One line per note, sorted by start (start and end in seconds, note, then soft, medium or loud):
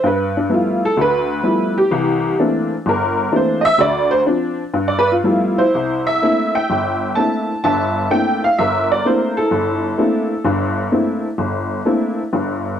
0.04 0.44 G2 medium
0.04 0.36 B4 medium
0.37 0.51 D4 medium
0.49 0.84 F3 medium
0.49 0.84 G3 soft
0.49 0.84 A3 soft
0.49 0.84 B3 soft
0.49 0.84 E4 medium
0.54 0.84 F4 medium
0.85 0.98 A4 medium
0.97 1.38 D2 medium
1.01 1.75 B4 medium
1.43 1.78 F3 medium
1.43 1.78 G3 soft
1.43 1.78 A3 soft
1.43 1.78 B3 soft
1.43 1.78 E4 medium
1.78 2.35 G4 medium
1.91 2.32 C2 medium
1.91 2.32 E3 medium
2.39 2.72 E3 medium
2.39 2.72 A3 medium
2.39 2.73 A#3 medium
2.39 2.73 C4 medium
2.39 2.73 D4 medium
2.86 3.26 G1 medium
2.86 3.31 A#4 medium
3.32 3.65 E3 medium
3.32 3.66 A3 soft
3.32 3.66 A#3 soft
3.32 3.66 C4 soft
3.32 3.66 D4 medium
3.36 3.65 C5 medium
3.61 3.63 D#5 medium
3.65 3.79 E5 loud
3.78 4.19 D2 medium
3.78 4.11 D5 medium
4.11 4.20 C5 medium
4.26 4.60 F3 medium
4.26 4.60 C4 medium
4.26 4.60 D4 medium
4.74 5.17 G2 medium
4.88 5.06 D5 medium
4.99 5.11 B4 medium
5.12 5.60 F4 medium
5.24 5.60 F3 medium
5.24 5.60 G3 medium
5.24 5.60 A3 soft
5.24 5.60 B3 soft
5.24 5.57 E4 medium
5.58 6.21 E4 medium
5.58 6.04 C5 medium
5.74 6.16 C2 medium
6.07 6.52 E5 medium
6.22 6.57 A3 soft
6.22 6.57 A#3 soft
6.22 6.57 C4 soft
6.22 6.57 D4 soft
6.22 6.57 E4 soft
6.55 7.46 E5 medium
6.55 7.19 G5 medium
6.70 7.11 G1 medium
7.15 7.51 A3 soft
7.15 7.51 A#3 soft
7.15 7.51 C4 soft
7.15 7.52 D4 soft
7.15 7.51 E4 soft
7.15 7.62 A5 medium
7.64 8.06 G1 medium
7.64 8.05 G2 medium
7.64 8.54 E5 medium
7.64 8.13 A5 medium
8.10 8.45 A3 soft
8.10 8.45 A#3 soft
8.10 8.45 C4 soft
8.10 8.45 D4 soft
8.10 8.45 E4 medium
8.10 8.41 G5 medium
8.44 8.59 F5 medium
8.58 8.99 G1 medium
8.58 9.48 A#4 medium
8.58 8.88 E5 medium
8.92 9.06 D5 medium
9.05 9.38 A3 soft
9.05 9.38 A#3 soft
9.05 9.38 C4 soft
9.05 9.39 D4 soft
9.05 9.37 E4 medium
9.05 9.38 C5 medium
9.37 9.97 E4 medium
9.37 10.73 A4 medium
9.51 9.92 G1 medium
9.98 10.31 A3 medium
9.98 10.31 A#3 soft
9.98 10.32 C4 soft
9.98 10.32 D4 medium
9.98 10.32 E4 medium
10.45 10.85 G1 medium
10.45 10.86 G2 medium
10.92 11.25 A3 medium
10.92 11.25 A#3 soft
10.92 11.25 C4 soft
10.92 11.25 D4 soft
10.92 11.25 E4 medium
11.38 11.79 G1 medium
11.85 12.19 A3 medium
11.85 12.19 A#3 soft
11.85 12.19 C4 soft
11.85 12.20 D4 soft
11.85 12.20 E4 medium
12.33 12.75 G1 medium
12.33 12.75 G2 medium